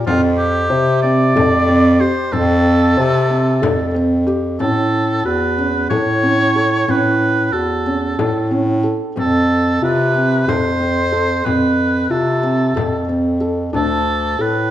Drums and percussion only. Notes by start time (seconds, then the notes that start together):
0.07 frame drum
1.37 frame drum
1.69 frame drum
2.01 frame drum
2.33 frame drum
2.99 frame drum
3.63 frame drum
3.95 frame drum
4.60 frame drum
5.91 frame drum
6.24 frame drum
6.88 frame drum
8.19 frame drum
8.84 frame drum
9.17 frame drum
10.49 frame drum
11.14 frame drum
11.46 frame drum
11.79 frame drum
12.77 frame drum
13.09 frame drum
13.42 frame drum
13.74 frame drum